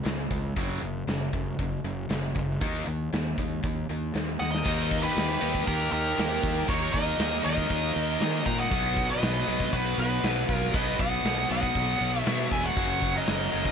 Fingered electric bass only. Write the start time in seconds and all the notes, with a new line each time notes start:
0.05 C#2
0.31 C#2
0.57 F#1
0.82 F#1
1.07 F#1
1.33 F#1
1.59 F#1
1.84 F#1
2.10 F#1
2.36 F#1
2.61 D#2
2.87 D#2
3.13 D#2
3.38 D#2
3.64 D#2
3.89 D#2
4.15 D#2
4.41 D#2
4.66 D#2
5.17 D#2
5.42 D#2
5.68 D#2
5.92 D#2
6.18 D#2
6.43 D#2
6.69 D#2
6.94 D#2
7.19 D#2
7.45 D#2
7.71 D#2
7.96 D#2
8.20 D#3
8.47 A#2
8.71 B1
9.23 B1
9.48 B1
9.73 B1
9.98 B1
10.23 B1
10.49 B1
10.74 B1
11.00 B1
11.25 B1
11.50 B1
11.76 B1
12.01 B1
12.27 B2
12.52 E1
12.77 F#1
13.28 F#1
13.54 F#1